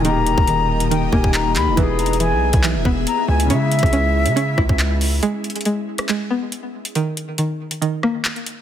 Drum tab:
HH |x-----------x-----------x-----------------x-----x-----------------------x-----------x-----------|x-----------x---x---x---x-----------------x-----x-----------------------x-----------------x-----|x-----------x---x---x---x-----------------x-----x-----------------------x-----------o-----------|x-----------x--x--x--x--x-----------------x-----x-----------------------x-----------------x-----|
CP |------------------------------------------------------------------------x-----------x-----------|------------------------------------------------x-----------------------------------------------|------------------------------------------------------------------------x-----------------------|------------------------------------------------x-----------------------------------------------|
SD |------------------------------------------------------------------------------------------------|------------------------------------------------------------------------------------------------|------------------r-----------------------------------------r-----------------------------------|------------------------------------------r-----------------------------------------------------|
BD |------------------o-----------------------------------------o-----o-----------------------------|o-----------------------------------------o-----------------o-----------------------------------|------------------o-----------------------------------------o-----o-----------------------------|------------------------------------------------------------------------------------------------|

HH |x-----------x-----------x-----------------x-----x-----------------------x-----x-----x-----------|
CP |------------------------------------------------------------------------x-----------------------|
SD |------------------------------------------------------------r-----------------------------------|
BD |------------------------------------------------------------------------------------------------|